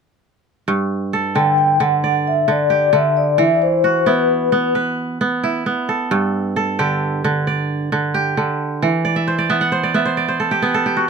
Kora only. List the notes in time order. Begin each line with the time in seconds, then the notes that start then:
0.68 G2
1.13 A4
1.36 D3
1.80 D3
2.04 D5
2.48 D3
2.70 G4
2.93 D3
3.38 E3
3.84 F#4
4.06 B3 E4
4.52 B3
4.75 B4
5.21 B3
5.44 E4
5.66 B3
5.89 A4
6.11 G2
6.56 A4
6.79 D3 G4
7.24 D3
7.47 D5
7.92 D3
8.14 G4
8.37 D3
8.82 E3
9.05 D5
9.16 E5
9.27 C5
9.38 D5
9.50 B3 E5
9.61 F#5
9.72 C5
9.83 D5
9.94 B3 E5
10.05 C5
10.17 D5
10.28 C5
10.40 A4
10.51 G4
10.62 B3 B4
10.74 A4
10.86 G4
10.97 F#4